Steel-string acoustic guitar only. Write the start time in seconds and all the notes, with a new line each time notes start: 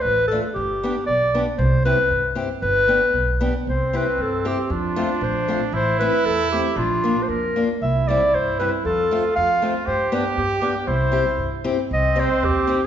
0.32 A3 D4 F4
0.83 B3 D4 G4
1.34 B3 D4 G4
1.85 C4 E4 G4
2.35 C4 E4 G4
2.88 B3 D4 G4
3.41 B3 D4 G4
3.93 C4 E4 G4
4.45 C4 E4 G4
4.96 A3 C4 F4
5.48 A3 C4 F4
6.01 A3 C4 E4
6.52 A3 C4 E4
7.04 A#3 D4 F4
7.56 A#3 D4 F4
8.09 G3 C4 E4
8.60 G3 C4 E4
9.11 A3 C4 F4
9.62 A3 C4 F4
10.12 B3 D4 G4
10.62 B3 D4 G4
11.12 C4 E4 G4
11.64 C4 E4 G4
12.16 C4 D#4 G4
12.67 C4 D#4 G4